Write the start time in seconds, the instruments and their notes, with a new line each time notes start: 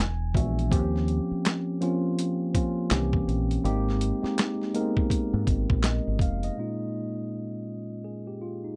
0.00 fingered electric bass E1, tine electric piano G#5, closed hi-hat
0.34 fingered electric bass A#1, tine electric piano E3 G#3 B3 D4 F#4 E5, kick, closed hi-hat
0.59 closed hi-hat
0.71 fingered electric bass D#2, tine electric piano F3 A#3 C4 C#4 G4, kick, closed hi-hat
0.96 snare
1.08 closed hi-hat
1.31 muted fingered electric bass stroke
1.45 snare, clap, closed hi-hat
1.81 tine electric piano F3 A#3 C4 C#4 F4, closed hi-hat
2.19 closed hi-hat
2.54 tine electric piano F3 A#3 C4 C#4 F4, kick, closed hi-hat
2.91 fingered electric bass C2, tine electric piano D#3 A#3 C4 C#4 G4, snare, clap, closed hi-hat
2.98 tine electric piano E3
3.13 kick
3.28 fingered electric bass A#1, closed hi-hat
3.51 closed hi-hat
3.64 fingered electric bass G#1, tine electric piano G#3 A#3 C4 D#4 G4, closed hi-hat
3.88 snare
4.01 closed hi-hat
4.22 tine electric piano G#3 A#3 C4 D#4 G4, muted fingered electric bass stroke, snare
4.38 snare, clap, closed hi-hat
4.61 snare
4.74 tine electric piano G#3 A#3 B3 D#4 A#4, closed hi-hat
4.81 tine electric piano C4
4.97 kick
5.10 kick, closed hi-hat
5.34 fingered electric bass G#2
5.47 fingered electric bass G#1, kick, closed hi-hat
5.70 fingered electric bass A#1, kick
5.83 tine electric piano D#5, snare, clap, closed hi-hat
6.07 fingered electric bass G#1
6.19 fingered electric bass F1, tine electric piano F5, kick, closed hi-hat
6.43 tine electric piano D#5, closed hi-hat
6.57 tine electric piano A#2 G#3 A#3 C#4 D#4 F4
8.04 tine electric piano G#4
8.27 tine electric piano G4
8.42 tine electric piano F4
8.64 tine electric piano D#4